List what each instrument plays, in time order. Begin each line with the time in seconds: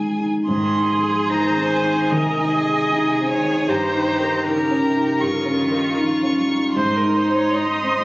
Already playing: grand piano D#3 G#3 D#4 G#4, violin G#4 G#5
0.20 grand piano D#4
0.48 grand piano G#2, cello D#3, viola G#4, violin G#4 C6
0.75 grand piano D#4
0.91 cello F3
1.03 grand piano G#4
1.29 cello D#3, grand piano D#4, viola C5, violin A#5
1.56 grand piano C4
1.71 violin G#5
1.84 grand piano D#4
2.11 cello C3, grand piano D#3, violin A#4, viola D#5
2.38 grand piano D#4
2.52 violin G#4
2.65 grand piano G#4
2.91 cello C3, grand piano D#4
3.20 grand piano C4
3.30 cello D#3, viola C#5
3.68 grand piano G2, cello D#3, violin G4 A#5, viola C5
3.94 grand piano D#4
4.20 grand piano A#4
4.46 cello C#3, grand piano D#4, violin G4 A#5, viola A#4
4.70 grand piano C#4
4.84 cello C3
4.96 grand piano D#4
5.20 grand piano G2, cello C#3, violin F4 C#6
5.45 grand piano C#4
5.59 cello D#3
5.72 grand piano A#4
5.97 cello F3, grand piano D#4, violin C#6
6.23 grand piano C#4
6.38 cello G3
6.48 grand piano D#4
6.76 grand piano G#2, cello G#3, violin D#4 C6, viola C5
6.97 viola A#4
7.03 grand piano D#4
7.16 viola C5
7.29 grand piano C5
7.36 viola C#5
7.55 cello G#3, grand piano D#4, viola D#5
7.83 grand piano C4
7.99 cello G3